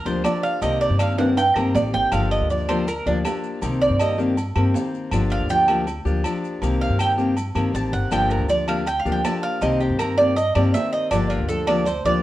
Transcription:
0.05 upright bass D2, steel-string acoustic guitar F3 A#3 D4 G4, cuban tres C5, maracas
0.23 steel-string acoustic guitar F3 D4 G4, cuban tres D5, low timbale, low agogo, claves, maracas
0.43 cuban tres F5, maracas
0.61 upright bass C2, steel-string acoustic guitar C3 D#3 A#3 C4 G4, cuban tres D#5, low agogo, maracas
0.81 cuban tres D5, maracas
0.90 upright bass G2
0.99 steel-string acoustic guitar D#3 A#3 C4 G4, cuban tres F5, low agogo, claves, maracas
1.17 steel-string acoustic guitar D#3 A#3 C4 G4, cuban tres F#5, high timbale, maracas
1.37 cuban tres G5, muted steel-string acoustic guitar stroke, high timbale, low agogo, maracas
1.55 upright bass G2, steel-string acoustic guitar D#3 A#3 C4 G4, cuban tres A#4, low agogo, claves, maracas
1.74 upright bass A1, steel-string acoustic guitar D#3 A#3 C4 G4, cuban tres D5, low timbale, maracas
1.93 upright bass G1, cuban tres G5, low timbale, maracas
2.12 upright bass G1, steel-string acoustic guitar D3 F3 A#3 D4 G4, cuban tres F5, low agogo, claves, maracas
2.31 cuban tres D#5, low agogo, maracas
2.40 upright bass D2
2.50 steel-string acoustic guitar F3 A#3 D4 G4, cuban tres D5, maracas
2.68 steel-string acoustic guitar F3 A#3 D4 G4, cuban tres C5, low agogo, claves, maracas
2.87 cuban tres A#4, muted steel-string acoustic guitar stroke, low agogo, maracas
3.05 upright bass D2, steel-string acoustic guitar F3 A#3 D4 G4, cuban tres D4, maracas
3.25 steel-string acoustic guitar F3 A#3 D4 G4, low timbale, low agogo, claves, maracas
3.44 maracas
3.62 upright bass C2, steel-string acoustic guitar C3 D#3 A#3 C4 G4, low agogo, maracas
3.82 cuban tres D5, maracas
3.90 upright bass G2
3.99 steel-string acoustic guitar D#3 A#3 C4 G4, cuban tres D#5, low agogo, claves, maracas
4.18 steel-string acoustic guitar D#3 A#3 C4 G4, maracas
4.37 muted steel-string acoustic guitar stroke, low agogo, maracas
4.55 upright bass G2, steel-string acoustic guitar D#3 A#3 C4 G4, low agogo, claves, maracas
4.74 steel-string acoustic guitar D#3 A#3 C4 G4, low timbale, maracas
4.94 maracas
5.11 upright bass G1, steel-string acoustic guitar D3 F3 A#3 D4 G4, low agogo, claves, maracas
5.30 cuban tres F5, low agogo, maracas
5.39 upright bass D2
5.49 steel-string acoustic guitar F3 A#3 D4 G4, cuban tres G5, maracas
5.68 steel-string acoustic guitar F3 A#3 D4 G4, low agogo, claves, maracas
5.87 muted steel-string acoustic guitar stroke, low agogo, maracas
6.05 upright bass D2, steel-string acoustic guitar F3 A#3 D4 G4, maracas
6.24 steel-string acoustic guitar F3 A#3 D4 G4, low agogo, claves, maracas
6.44 maracas
6.62 upright bass C2, steel-string acoustic guitar C3 D#3 A#3 C4 G4, low agogo, maracas
6.81 cuban tres F5, maracas
6.90 upright bass G2
6.99 steel-string acoustic guitar D#3 A#3 C4 G4, cuban tres G5, low agogo, claves, maracas
7.18 steel-string acoustic guitar D#3 A#3 C4 G4, maracas
7.37 muted steel-string acoustic guitar stroke, low agogo, maracas
7.55 upright bass G2, steel-string acoustic guitar D#3 A#3 C4 G4, low agogo, claves, maracas
7.73 upright bass A1, steel-string acoustic guitar D#3 A#3 C4 G4, cuban tres A5, maracas
7.93 upright bass G1, cuban tres F#5, maracas
8.11 upright bass G1, steel-string acoustic guitar D3 F3 A#3 D4 G4, cuban tres G5, low agogo, claves, maracas
8.30 cuban tres A#4, low agogo, maracas
8.39 upright bass D2
8.48 steel-string acoustic guitar F3 A#3 D4 G4, cuban tres D5, maracas
8.68 steel-string acoustic guitar F3 A#3 D4 G4, cuban tres F5, low agogo, claves, maracas
8.86 cuban tres G5, muted steel-string acoustic guitar stroke, low agogo, maracas
8.99 cuban tres F5
9.05 upright bass D2, steel-string acoustic guitar F3 A#3 D4 G4, maracas
9.12 cuban tres G5
9.23 steel-string acoustic guitar F3 A#3 D4 G4, cuban tres A5, low timbale, low agogo, claves, maracas
9.43 cuban tres F5, maracas
9.61 upright bass C2, steel-string acoustic guitar C3 D#3 A#3 C4 G4, cuban tres D#5, low agogo, maracas
9.80 cuban tres G4, maracas
9.90 upright bass G2
9.99 steel-string acoustic guitar D#3 A#3 C4 G4, cuban tres A#4, low agogo, claves, maracas
10.18 steel-string acoustic guitar D#3 A#3 C4 G4, cuban tres D5, maracas
10.36 cuban tres D#5, muted steel-string acoustic guitar stroke, low agogo, maracas
10.55 upright bass G2, steel-string acoustic guitar D#3 A#3 C4 G4, cuban tres D5, low agogo, claves, maracas
10.74 steel-string acoustic guitar D#3 A#3 C4 G4, cuban tres E5, low timbale, maracas
10.93 cuban tres D#5, maracas
11.11 upright bass G1, steel-string acoustic guitar D3 F3 A#3 D4 G4, cuban tres D5, low agogo, claves, maracas
11.30 cuban tres F4, low agogo, maracas
11.39 upright bass D2
11.49 steel-string acoustic guitar F3 A#3 D4 G4, cuban tres A4, maracas
11.67 steel-string acoustic guitar F3 A#3 D4 G4, cuban tres D5, low agogo, claves, maracas
11.86 cuban tres C5, muted steel-string acoustic guitar stroke, low agogo, maracas
12.05 upright bass D2, steel-string acoustic guitar F3 A#3 D4 G4, cuban tres D5, maracas

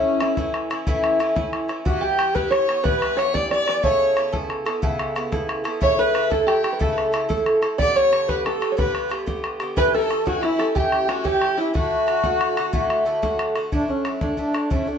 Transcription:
Already playing: bouzouki A2 E3 C#4 E4, five-string banjo C#4, alto flute C#4, fiddle C#4
0.20 bouzouki A2 E3 C#4 E4, five-string banjo E4, bodhran
0.37 bouzouki A2 E3 C#4 E4, bodhran
0.54 bodhran
0.70 bouzouki E3 C#4 E4, bodhran
0.87 bouzouki A2 E3 C#4 E4, bodhran
1.04 bodhran
1.19 bouzouki A2 E3 C#4 E4, bodhran
1.36 bouzouki A2 E3 C#4 E4, bodhran
1.53 bodhran
1.68 bouzouki E3 C#4 E4, bodhran
1.85 bouzouki G2 E3 B3 G4, alto flute F#4, five-string banjo F#4, fiddle F#4, bodhran
2.01 five-string banjo G4, alto flute G4, fiddle G4
2.18 bouzouki G2 E3 B3 G4, bodhran
2.34 bouzouki G2 E3 B3 G4, alto flute B4, five-string banjo B4, fiddle B4, bodhran
2.51 five-string banjo C#5, alto flute C#5, fiddle C#5, bodhran
2.67 bouzouki E3 B3 G4, bodhran
2.83 bouzouki G2 E3 B3 G4, alto flute B4, five-string banjo B4, fiddle B4, bodhran
3.02 bodhran
3.16 bouzouki G2 E3 B3 G4, alto flute C#5, five-string banjo C#5, fiddle C#5, bodhran
3.33 bouzouki G2 E3 B3 G4, alto flute D5, five-string banjo D5, fiddle D5, bodhran
3.49 alto flute D5, fiddle D5, five-string banjo D5, bodhran
3.66 bouzouki E3 B3 G4, five-string banjo D5, bodhran
3.83 bouzouki C#3 B3 E4 A4, alto flute C#5, fiddle C#5, five-string banjo C#5, bodhran
4.16 bouzouki C#3 B3 E4 A4, bodhran
4.32 bouzouki C#3 B3 E4 A4, bodhran
4.50 bodhran
4.65 bouzouki B3 E4 A4, bodhran
4.82 bouzouki C#3 B3 E4 A4, bodhran
4.99 bodhran
5.16 bouzouki C#3 B3 E4 A4, bodhran
5.32 bouzouki C#3 B3 E4 A4, bodhran
5.49 bodhran
5.64 bouzouki B3 E4 A4, bodhran
5.80 bouzouki C#3 A3 E4 A4, alto flute C#5, fiddle C#5, five-string banjo C#5, bodhran
5.98 alto flute B4, fiddle B4, five-string banjo B4
6.14 bouzouki C#3 A3 E4 A4, bodhran
6.30 bouzouki C#3 A3 E4 A4, fiddle A4, alto flute A4, five-string banjo A4, bodhran
6.47 five-string banjo G4, fiddle G4, alto flute G4, bodhran
6.63 bouzouki A3 E4 A4, bodhran
6.72 five-string banjo B4
6.79 bouzouki C#3 A3 E4 A4, alto flute A4, fiddle A4, five-string banjo A4, bodhran
6.92 fiddle B4
6.98 bodhran
7.02 fiddle A4
7.12 bouzouki C#3 A3 E4 A4, bodhran
7.29 bouzouki C#3 A3 E4 A4, bodhran
7.46 bodhran
7.62 bouzouki A3 E4 A4, bodhran
7.78 bouzouki G2 D3 B3 G4, five-string banjo D5, fiddle D5, alto flute D5, bodhran
7.95 alto flute C#5, fiddle C#5, five-string banjo C#5
8.11 bouzouki G2 D3 B3 G4, bodhran
8.28 bouzouki G2 D3 B3 G4, alto flute B4, five-string banjo B4, fiddle B4, bodhran
8.45 alto flute A4, fiddle A4, five-string banjo A4, bodhran
8.60 bouzouki D3 B3 G4, bodhran
8.72 five-string banjo C#5
8.77 bouzouki G2 D3 B3 G4, fiddle B4, alto flute B4, five-string banjo B4, bodhran
8.95 bodhran
9.09 bouzouki G2 D3 B3 G4, bodhran
9.26 bouzouki G2 D3 B3 G4, bodhran
9.44 bodhran
9.60 bouzouki D3 B3 G4, bodhran
9.76 bouzouki A2 E3 C#4 G4, fiddle B4, alto flute B4, five-string banjo B4, bodhran
9.94 fiddle A4, alto flute A4, five-string banjo A4
10.09 bouzouki A2 E3 C#4 G4, bodhran
10.25 bouzouki A2 E3 C#4 G4, fiddle F#4, five-string banjo F#4, alto flute F#4, bodhran
10.41 fiddle E4, five-string banjo E4, alto flute E4, bodhran
10.59 bouzouki E3 C#4 G4, five-string banjo A4, alto flute A4, bodhran
10.75 bouzouki A2 E3 C#4 G4, five-string banjo G4, fiddle G4, alto flute G4, bodhran
10.92 bodhran
11.08 bouzouki A2 E3 C#4 G4, fiddle F#4, five-string banjo F#4, alto flute F#4, bodhran
11.24 bouzouki A2 E3 C#4 G4, five-string banjo G4, fiddle G4, alto flute G4, bodhran
11.42 bodhran
11.57 bouzouki E3 C#4 G4, five-string banjo E4, fiddle E4, alto flute E4
11.74 bouzouki A2 D3 A3 F#4, fiddle F#4, five-string banjo F#4, alto flute F#4, bodhran
12.07 bouzouki A2 D3 A3, bodhran
12.24 bouzouki A2 D3 A3 F#4, bodhran
12.41 bodhran
12.57 bouzouki D3 A3 F#4, bodhran
12.73 bouzouki A2 D3 A3 F#4, bodhran
12.90 bodhran
13.05 bouzouki A2 D3 A3 F#4
13.22 bouzouki A2 D3 A3 F#4, bodhran
13.39 bodhran
13.55 bouzouki D3 A3 F#4, bodhran
13.72 bouzouki A2 F#3 A3 D4, alto flute D4, bodhran
13.88 bouzouki F#3 A3 D4, alto flute C#4, bodhran
14.05 bouzouki A2 F#3 A3 D4, bodhran
14.21 bouzouki A2 F#3 A3 D4, alto flute D4, bodhran
14.37 bouzouki A2 F#3 A3 D4, alto flute D4, bodhran
14.53 bouzouki F#3 A3 D4, bodhran
14.70 bouzouki A2 F#3 A3 D4, alto flute C#4, bodhran
14.87 bouzouki F#3 A3 D4, alto flute D4

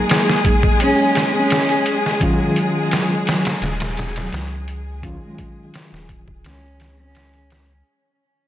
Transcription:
Already playing: reed electric piano F#3 A#3 D#4 G#4, string section G#3 G#4
0.09 snare, closed hi-hat
0.30 snare
0.45 kick, closed hi-hat
0.63 kick
0.80 cello C#4, closed hi-hat
1.15 snare, closed hi-hat
1.36 cello C#4
1.50 snare, closed hi-hat
1.69 closed hi-hat
1.86 closed hi-hat
2.06 snare
2.20 reed electric piano D#3 F#3 C#4 F4, cello F#3, kick, closed hi-hat
2.56 cello F#3, closed hi-hat
2.91 snare, closed hi-hat
3.27 cello F#3, snare, closed hi-hat
3.45 snare, closed hi-hat
3.62 analog synth bass D#1, snare, closed hi-hat
3.80 snare, closed hi-hat
3.97 snare, closed hi-hat
4.16 cello F#3, snare, closed hi-hat
4.33 analog synth bass C#2, snare, closed hi-hat
4.68 closed hi-hat
5.02 reed electric piano D#3 F#3 C#4 F4, kick, closed hi-hat
5.24 cello G#3
5.38 kick, closed hi-hat
5.74 snare, closed hi-hat
5.93 analog synth bass D#1, snare
6.09 kick, closed hi-hat
6.28 kick
6.44 analog synth bass C#2, cello C#4, snare, closed hi-hat
6.80 snare, closed hi-hat
7.00 cello C#4
7.15 snare, closed hi-hat
7.34 closed hi-hat
7.50 snare, closed hi-hat

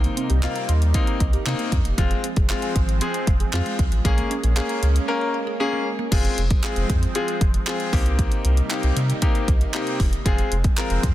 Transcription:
Already playing: analog synth pad C3 G3 A#3 D#4, grand piano A#3 C4 D#4
0.04 synth arpeggio sound A#3, closed hi-hat
0.17 synth arpeggio sound C4, closed hi-hat
0.30 sub bass C2, synth arpeggio sound G4, closed hi-hat
0.43 grand piano A#3 C4 F4, synth arpeggio sound D#5, clap, closed hi-hat
0.56 synth arpeggio sound A#5, closed hi-hat
0.69 sub bass D#2, synth arpeggio sound C6, closed hi-hat
0.82 closed hi-hat
0.94 grand piano A#3 C4 D#4, synth arpeggio sound C6, kick, closed hi-hat
1.07 synth arpeggio sound A#5, closed hi-hat
1.20 sub bass C2, synth arpeggio sound D#5, kick, closed hi-hat
1.33 synth arpeggio sound G4, closed hi-hat
1.46 sub bass C3, grand piano A#3 C4 D#4, synth arpeggio sound C4, clap, closed hi-hat
1.59 synth arpeggio sound A#3, closed hi-hat
1.72 sub bass F2, kick, closed hi-hat
1.85 sub bass E1, synth arpeggio sound A#3, closed hi-hat
1.98 sub bass F1, analog synth pad F3 G#3 C4, synth arpeggio sound F3, grand piano G#3 C4 F4, kick, closed hi-hat
2.11 synth arpeggio sound G#3, closed hi-hat
2.24 synth arpeggio sound C4, closed hi-hat
2.36 sub bass F1, synth arpeggio sound G#4, kick, closed hi-hat
2.49 grand piano G#3 C4 F4, synth arpeggio sound F5, clap, closed hi-hat
2.62 synth arpeggio sound G#5, closed hi-hat
2.75 sub bass G#1, synth arpeggio sound C6, kick, closed hi-hat
2.89 closed hi-hat
3.01 grand piano G#3 C4 G#4, synth arpeggio sound C6, closed hi-hat
3.14 synth arpeggio sound G#5, closed hi-hat
3.27 sub bass F1, synth arpeggio sound F5, kick, closed hi-hat
3.40 synth arpeggio sound G#4, closed hi-hat
3.53 sub bass F2, grand piano G#3 C4 F4, synth arpeggio sound C4, clap, closed hi-hat
3.66 synth arpeggio sound G#3, closed hi-hat
3.79 sub bass C2, kick, closed hi-hat
3.92 sub bass A1, synth arpeggio sound G#3, closed hi-hat
4.05 sub bass A#1, synth arpeggio sound F3, grand piano A#3 C#4 G#4, analog synth pad A#3 C#4, kick, closed hi-hat
4.18 synth arpeggio sound A#3, closed hi-hat
4.31 synth arpeggio sound C#4, closed hi-hat
4.44 sub bass A#1, synth arpeggio sound G#4, closed hi-hat
4.56 grand piano A#3 C#4 G#4, synth arpeggio sound F5, clap, closed hi-hat
4.69 synth arpeggio sound A#5, closed hi-hat
4.82 sub bass C#2, synth arpeggio sound C#6, closed hi-hat
4.96 closed hi-hat
5.08 grand piano A#3 C#4 A#4, synth arpeggio sound C#6
5.21 synth arpeggio sound A#5
5.34 synth arpeggio sound F5
5.47 synth arpeggio sound G#4
5.60 grand piano A#3 C#4 G#4, synth arpeggio sound C#4
5.73 synth arpeggio sound A#3
5.99 synth arpeggio sound A#3
6.12 sub bass F1, analog synth pad F3 G#3 C4, grand piano G#3 C4 F4 G#4, kick, closed hi-hat, crash
6.25 closed hi-hat
6.38 sub bass F1, closed hi-hat
6.50 kick, closed hi-hat
6.63 grand piano G#3 C4 F4 G#4, clap, closed hi-hat
6.76 sub bass F1, closed hi-hat
6.90 sub bass F2, kick, closed hi-hat
7.03 closed hi-hat
7.15 grand piano G#3 C4 F4 G#4, closed hi-hat
7.28 closed hi-hat
7.41 sub bass F1, kick, closed hi-hat
7.54 closed hi-hat
7.67 grand piano G#3 C4 F4 G#4, clap, closed hi-hat
7.80 closed hi-hat
7.93 sub bass C2, analog synth pad C3 G3 A#3 D#4, grand piano A#3 C4 D#4 G4, kick, open hi-hat
8.06 closed hi-hat
8.19 kick, closed hi-hat
8.32 closed hi-hat
8.45 sub bass C2, closed hi-hat
8.57 closed hi-hat
8.70 grand piano A#3 C4 D#4 G4, clap, closed hi-hat
8.83 sub bass C2, closed hi-hat
8.96 sub bass C3, closed hi-hat
9.10 closed hi-hat
9.22 grand piano A#3 C4 D#4 G4, kick, closed hi-hat
9.35 closed hi-hat
9.48 sub bass C2, kick, closed hi-hat
9.61 closed hi-hat
9.74 grand piano A#3 C4 D#4 G4, clap, closed hi-hat
9.87 closed hi-hat
10.00 sub bass E1, kick, open hi-hat
10.13 closed hi-hat
10.25 sub bass F1, analog synth pad F3 G#3 C4, grand piano G#3 C4 F4 G#4, kick, closed hi-hat
10.38 closed hi-hat
10.52 sub bass F1, closed hi-hat
10.64 kick, closed hi-hat
10.77 grand piano G#3 C4 F4 A#4, clap, closed hi-hat
10.90 sub bass F1, closed hi-hat
11.03 sub bass F2, kick, closed hi-hat

